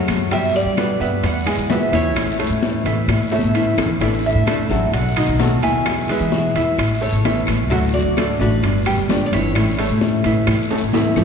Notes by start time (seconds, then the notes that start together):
Already playing: C#3 F#3 A3 C#4 F#4 F#5
0.08 F#2, high bongo, high conga, high timbale, short guiro, claves
0.31 G2 B2 D3 G3 B3 G4 E5 G5, high bongo, high conga, high timbale, long guiro
0.55 G3 B3 G4 D5, high conga
0.65 G3
0.77 B2 D3 G3 B3 G4 B4 D5, high bongo, high conga, high timbale, short guiro, claves
0.99 G2 G3 B3 G4 B4 E5, high conga, short guiro
1.23 E2 F#5, muted nylon-string guitar stroke, high bongo, high conga, high timbale, long guiro
1.46 G#3 B3 E4 G#4 G#5, high conga, high timbale, claves
1.58 E2
1.69 B2 E3 G#3 B3 E4 B4 E5, high bongo, low bongo, high conga, low timbale, short guiro
1.92 E2 E3 E4 C#5 E5, high conga, high timbale, short guiro
2.15 A1 E3 A3 C#4 E4, high bongo, high conga, high timbale, long guiro, claves
2.39 A3 C#4 E4 A4 C#5, high bongo, high conga, high timbale
2.50 A2
2.62 E3 A3 C#4 E4, high bongo, high conga, short guiro
2.85 A1 E3 A3 C#4 E4 E5, high bongo, high conga, high timbale, short guiro
3.08 A2, muted nylon-string guitar stroke, high bongo, high conga, high timbale, long guiro, claves
3.31 A3 C#4 E4 A4 C#5 E5, high bongo
3.39 high conga
3.43 A1
3.54 E3 A3 C#4 E4 E5, high timbale, short guiro
3.77 A1, low bongo, high timbale, short guiro, claves
3.85 low conga
4.00 A1 D3 E3 A3 D4 E4 D5 E5, high bongo, high conga, high timbale, long guiro
4.24 A3 D4 E4 E5, high conga
4.35 A2
4.47 D3 A3 D4 A4 D5, high bongo, high conga, high timbale, short guiro, claves
4.51 E4
4.70 A1 F#3 A3 D4 E4 F#4 A4, high conga, short guiro
4.92 B1 F#5, muted nylon-string guitar stroke, high bongo, high conga, high timbale, long guiro
5.16 D#3 A3 B3 D#4 F#4 D#5, high conga, high timbale, claves
5.27 B1
5.39 B2 D#3 F#3 A3 B3 F#4 A4, high bongo, low bongo, high conga, short guiro
5.62 D#2 E4 E5 G#5, high conga, high timbale, short guiro
5.86 E2 B2 E3 G#3 B3 E4, high bongo, high conga, high timbale, long guiro, claves
6.09 G#3 B3 E4 G#4 B4 E5, high bongo, high conga, high timbale
6.20 E3
6.32 B2 E3 G#3 B3 E4, high bongo, high conga, short guiro
6.55 E2 E3 G#3 B3 E4 E5, high bongo, high conga, high timbale, short guiro
6.78 A1, muted nylon-string guitar stroke, high bongo, high conga, high timbale, long guiro, claves
7.01 A3 C#4 E4 A4 C#5, high conga
7.13 A1
7.24 E3 A3 C#4 E4 E5, high bongo, low bongo, high conga, high timbale, short guiro
7.47 A1, high bongo, high conga, high timbale, short guiro, claves
7.70 D2 D3 F#3 A3 D4 F#4 E5 F#5, high bongo, high timbale, long guiro
7.93 A3 D4 F#4 D5, high conga
8.05 D3
8.16 D3 A3 D4 F#4 A4 D5, high bongo, high conga, high timbale, short guiro, claves
8.40 A1 A3 D4 F#4 B4 D5, high conga, short guiro
8.63 G1, muted nylon-string guitar stroke, high bongo, high conga, high timbale, long guiro
8.86 G3 D4 G4 G5, high conga, high timbale, claves
8.97 G1
9.09 D3 G3 D4 G4 D5, high bongo, low bongo, high conga, low timbale, short guiro
9.26 D5
9.32 G1 E3 E4 C#5 E5, high conga, high timbale, short guiro
9.55 A1 E3 A3 C#4 E4, high bongo, high conga, high timbale, long guiro, claves
9.78 A3 C#4 E4 A4 C#5, high bongo, high conga, high timbale
9.90 A2
10.01 E3 A3 C#4 E4, high bongo, high conga, short guiro
10.23 A1 E3 A3 C#4 E4 E5, high bongo, high conga, high timbale, short guiro
10.47 A2, muted nylon-string guitar stroke, high bongo, high conga, high timbale, long guiro, claves
10.70 A3 C#4 E4 A4 C#5, high conga, high timbale
10.82 A1
10.93 E3 A3 C#4 E4 E5, low bongo, high conga, high timbale, short guiro
11.16 A1, low bongo, low conga, low timbale, short guiro, claves